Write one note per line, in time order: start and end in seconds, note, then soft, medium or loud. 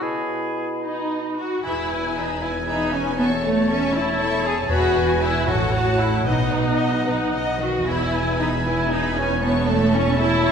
0.01 1.35 B2 soft
0.01 0.86 E4 soft
0.01 0.84 G#4 soft
0.01 0.82 B5 soft
0.84 1.34 D#4 soft
0.84 1.39 D#4 soft
0.84 1.37 B5 soft
1.38 1.64 F#4 soft
1.64 4.66 E1 soft
1.64 4.66 E2 soft
1.64 2.15 E4 soft
1.64 1.88 G#4 soft
1.64 2.39 B4 soft
1.64 1.88 E5 soft
1.64 2.38 G#5 soft
1.64 1.88 B5 soft
1.90 2.16 B4 soft
1.90 2.16 G#5 soft
2.15 2.42 D#4 soft
2.15 2.41 G#4 soft
2.15 2.41 E5 soft
2.15 2.42 B5 soft
2.41 2.50 E4 soft
2.41 2.67 B4 soft
2.41 3.19 B4 soft
2.41 2.67 G#5 soft
2.41 3.20 G#5 soft
2.41 2.68 G#5 soft
2.67 2.93 D#4 soft
2.67 2.91 G#4 soft
2.67 2.91 E5 soft
2.67 2.91 B5 soft
2.92 3.19 C#4 soft
2.92 3.18 B4 soft
2.92 3.18 G#5 soft
3.18 3.27 B3 medium
3.18 3.42 A4 soft
3.18 3.93 C#5 soft
3.18 3.42 E5 soft
3.18 3.94 A5 soft
3.18 3.42 C#6 soft
3.43 3.69 A3 medium
3.43 3.69 C#5 soft
3.43 3.69 A5 soft
3.68 3.94 C#4 medium
3.68 3.94 A4 soft
3.68 3.94 E5 soft
3.68 3.93 C#6 soft
3.93 4.44 E4 medium
3.93 4.72 C#5 soft
3.93 4.19 C#5 soft
3.93 4.19 A5 soft
3.93 4.72 A5 soft
4.19 4.42 A4 soft
4.19 4.42 E5 soft
4.19 4.42 C#6 soft
4.44 4.53 G#4 medium
4.44 4.69 C#5 soft
4.44 4.70 A5 soft
4.69 5.46 E1 soft
4.69 5.43 E2 soft
4.69 5.46 E2 soft
4.69 5.21 F#4 medium
4.69 4.93 G#4 soft
4.69 5.50 B4 soft
4.69 4.94 E5 soft
4.69 5.47 G#5 soft
4.69 4.93 B5 soft
4.95 5.21 B4 soft
4.95 5.21 G#5 soft
5.21 5.47 E4 medium
5.21 5.47 G#4 soft
5.21 5.47 E5 soft
5.21 5.48 B5 soft
5.47 6.27 A1 soft
5.47 6.27 A2 soft
5.47 5.73 F#4 medium
5.47 5.72 A4 soft
5.47 6.26 C#5 soft
5.47 6.25 F#5 soft
5.47 5.72 F#5 soft
5.47 5.72 A5 soft
5.73 6.00 F#4 soft
5.73 6.00 C#5 soft
5.73 6.00 F#5 soft
5.73 6.00 A5 soft
5.99 6.27 E4 soft
5.99 6.26 A4 soft
5.99 6.25 F#5 soft
5.99 6.27 A5 soft
6.26 7.63 B1 soft
6.26 7.00 B2 soft
6.26 7.05 D#4 medium
6.26 7.05 B4 soft
6.26 6.50 D#5 soft
6.26 6.52 D#5 soft
6.26 7.05 F#5 soft
6.26 6.51 F#5 soft
6.52 6.79 B4 soft
6.52 6.78 D#5 soft
6.52 6.80 F#5 soft
6.79 7.05 D#5 soft
6.79 7.07 D#5 soft
6.79 7.06 F#5 soft
7.05 7.14 B2 soft
7.05 7.59 D#4 soft
7.05 7.33 B4 soft
7.05 7.59 B4 soft
7.05 7.32 D#5 soft
7.05 7.59 F#5 soft
7.05 7.33 F#5 soft
7.33 7.41 C#3 soft
7.33 7.58 D#5 soft
7.33 7.59 D#5 soft
7.33 7.58 F#5 soft
7.59 7.86 D#3 soft
7.59 7.86 F#4 soft
7.59 7.86 B4 soft
7.59 7.86 D#5 soft
7.59 7.87 F#5 soft
7.86 10.52 E1 soft
7.86 10.52 E2 soft
7.86 8.39 E4 medium
7.86 8.11 G#4 soft
7.86 9.39 B4 soft
7.86 8.11 E5 soft
7.86 9.44 G#5 soft
7.86 8.12 B5 soft
8.13 8.39 B4 soft
8.13 8.39 G#5 soft
8.13 8.40 G#5 soft
8.39 8.47 D#4 medium
8.39 8.65 G#4 soft
8.39 8.65 E5 soft
8.39 8.66 B5 soft
8.65 8.90 E4 soft
8.65 8.91 B4 soft
8.65 8.91 G#5 soft
8.65 8.92 G#5 soft
8.91 9.17 D#4 soft
8.91 9.15 G#4 soft
8.91 9.15 E5 soft
8.91 9.16 B5 soft
9.17 9.42 C#4 medium
9.17 9.43 B4 soft
9.17 9.43 G#5 soft
9.42 9.67 B3 medium
9.42 9.66 E4 soft
9.42 9.66 C#5 soft
9.42 10.52 C#5 soft
9.42 10.52 A5 soft
9.42 9.66 C#6 soft
9.67 9.93 A3 medium
9.67 9.93 A4 soft
9.67 9.93 E5 soft
9.67 9.93 A5 soft
9.92 10.18 C#4 medium
9.92 10.18 E4 soft
9.92 10.17 C#5 soft
9.92 10.18 C#6 soft
10.17 10.52 E4 medium
10.17 10.43 A4 soft
10.17 10.43 E5 soft
10.17 10.44 A5 soft
10.43 10.52 E4 soft
10.43 10.52 C#5 soft
10.43 10.52 C#6 soft